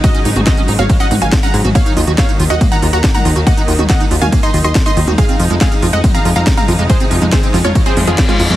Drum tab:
RD |x---x---x---x---|x---x---x---x---|x---x---x---x---|x---x---x---x---|
HH |xxoxxxoxxxoxxxox|xxoxxxoxxxoxxxox|xxoxxxoxxxoxxxox|xxoxxxoxxxoxxxox|
SD |----o-------o---|----o-------o---|----o-------o---|----o-------o---|
T2 |---o---o--o----o|--------o----o--|---o---o-------o|--------o----o--|
BD |o---o---o---o---|o---o---o---o---|o---o---o---o---|o---o---o---o---|

RD |x---x---x---x---|
HH |xxoxxxoxxxoxxxox|
SD |----o-o-----o---|
T2 |---o---o--o----o|
BD |o---o---o---o---|